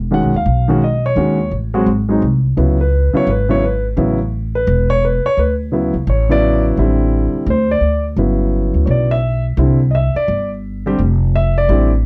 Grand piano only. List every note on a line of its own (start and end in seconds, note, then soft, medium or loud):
0.11 0.31 D#3 medium
0.11 0.31 G#3 soft
0.11 0.32 C#4 soft
0.11 0.32 F#4 medium
0.11 0.34 F#5 medium
0.36 0.80 F5 medium
0.68 0.80 D#3 medium
0.68 0.81 G#3 medium
0.68 0.81 C#4 medium
0.68 0.81 F#4 medium
0.84 1.04 D#5 medium
1.06 1.50 C#5 medium
1.15 1.36 D#3 medium
1.15 1.37 G#3 soft
1.15 1.37 C#4 soft
1.15 1.37 F#4 medium
1.74 1.86 F#3 medium
1.74 1.86 G#3 medium
1.74 1.86 C4 medium
1.74 1.86 F#4 medium
2.09 2.21 F#3 medium
2.09 2.21 G#3 soft
2.09 2.21 C4 medium
2.09 2.22 D#4 medium
2.57 2.77 C#3 medium
2.57 2.77 F#3 soft
2.57 2.77 B3 soft
2.57 2.77 E4 medium
2.81 3.13 B4 medium
3.13 3.26 C#3 medium
3.13 3.26 F#3 medium
3.13 3.27 B3 medium
3.13 3.27 E4 medium
3.13 3.28 C#5 medium
3.30 3.50 B4 medium
3.49 3.61 C#3 medium
3.49 3.61 F#3 medium
3.49 3.61 B3 medium
3.49 3.61 E4 medium
3.49 3.63 C#5 medium
3.65 3.85 B4 medium
3.97 4.17 C#3 medium
3.97 4.17 F#3 medium
3.97 4.17 B3 medium
3.97 4.18 E4 medium
4.55 4.88 B4 medium
4.90 5.02 C#5 medium
5.05 5.25 B4 medium
5.26 5.38 C#5 medium
5.39 5.52 B4 medium
5.72 5.92 C#3 medium
5.72 5.92 F#3 soft
5.72 5.92 B3 soft
5.72 5.93 E4 medium
6.10 6.30 C#5 medium
6.29 6.75 C#3 medium
6.29 6.75 F#3 medium
6.29 6.75 B3 medium
6.29 6.76 E4 medium
6.29 6.63 D5 medium
6.78 7.48 D3 medium
6.78 7.48 G3 medium
6.78 7.48 C4 medium
6.78 7.49 E4 medium
7.50 7.70 C5 medium
7.71 8.03 D5 medium
8.17 9.15 C#3 soft
8.17 9.15 F#3 soft
8.17 9.16 B3 soft
8.17 9.16 E4 medium
8.86 8.88 C#5 medium
8.91 9.11 D5 medium
9.11 9.43 E5 medium
9.58 9.78 D3 medium
9.58 9.78 G3 soft
9.58 9.78 C4 medium
9.58 9.79 E4 medium
9.91 9.93 D#5 soft
9.95 10.16 E5 medium
10.16 10.49 D5 medium
10.86 10.98 D3 medium
10.86 10.98 G3 medium
10.86 10.98 C4 medium
10.86 10.98 G4 medium
11.36 11.56 E5 medium
11.58 11.90 D5 medium
11.68 11.89 D3 medium
11.68 11.89 G3 medium
11.68 11.89 C4 medium
11.68 11.90 E4 medium